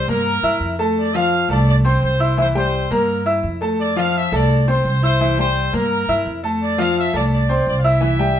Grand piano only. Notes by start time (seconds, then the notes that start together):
0.08 A#3 A#4 A#5
0.43 E4 E5 E6
0.79 A3 A4 A5
1.15 F3 F4 F5
1.50 A3 A4 A5
1.84 C4 C5 C6
2.20 E4 E5 E6
2.37 E3 E4 E5
2.55 G3 G4 G5
2.91 A#3 A#4 A#5
3.26 E4 E5 E6
3.61 A3 A4 A5
3.96 F3 F4 F5
4.32 A3 A4 A5
4.68 C4 C5 C6
5.03 E4 E5 E6
5.21 E3 E4 E5
5.38 G3 G4 G5
5.73 A#3 A#4 A#5
6.08 E4 E5 E6
6.43 A3 A4 A5
6.78 F3 F4 F5
7.13 A3 A4 A5
7.49 C4 C5 C6
7.84 E4 E5 E6
8.01 E3 E4 E5
8.19 G3 G4 G5